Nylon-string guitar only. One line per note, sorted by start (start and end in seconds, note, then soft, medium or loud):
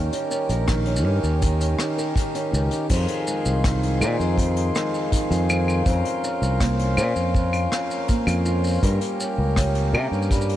0.00 0.68 D#3 medium
0.00 0.12 C#4 medium
0.00 0.15 G4 medium
0.00 0.49 A#4 medium
0.12 0.30 C#4 medium
0.31 0.85 C#4 medium
0.50 1.96 A#4 medium
0.68 1.41 D#3 medium
0.87 1.04 C#4 medium
1.05 1.60 C#4 medium
1.24 2.70 G4 medium
1.42 2.16 D#3 medium
1.61 1.78 C#4 medium
1.79 2.34 C#4 medium
1.98 2.90 A#4 medium
2.16 3.64 D#3 medium
2.35 2.52 C#4 medium
2.53 2.98 C#4 medium
2.72 2.98 G4 medium
2.90 4.37 F2 medium
2.90 4.01 C5 medium
3.27 4.74 G#3 medium
3.64 5.11 D#3 medium
4.01 4.20 A#4 medium
4.20 5.86 C5 medium
4.38 5.85 F2 medium
4.75 5.94 G#3 medium
5.12 5.94 D#3 medium
5.50 6.26 C4 medium
5.86 7.33 F2 medium
5.86 6.96 C5 medium
6.23 7.71 C#4 medium
6.60 8.08 A#3 medium
6.97 8.83 C5 medium
7.34 8.90 F2 medium
7.71 9.20 C#4 medium
8.09 8.82 A#3 medium
8.46 8.90 F4 medium
8.83 10.30 G3 medium
8.83 9.93 A#4 medium
9.20 9.56 C#4 medium
9.57 10.56 C#4 medium
9.94 10.56 A#4 medium
10.31 10.56 G3 medium